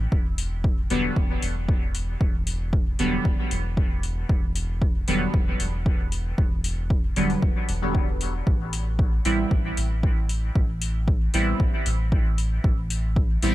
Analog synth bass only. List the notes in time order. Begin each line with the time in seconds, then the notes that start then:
0.12 E1
0.90 E1
1.16 E1
1.42 E1
2.21 E1
2.99 E1
3.25 E1
3.51 E1
4.29 E1
5.08 E1
5.34 E1
5.60 E1
6.38 E1
7.16 E1
7.42 E1
7.68 E1
8.47 A1
9.25 A1
9.51 A1
9.77 A1
10.55 A1
11.34 A1
11.60 A1
11.86 A1
12.64 A1
13.42 A1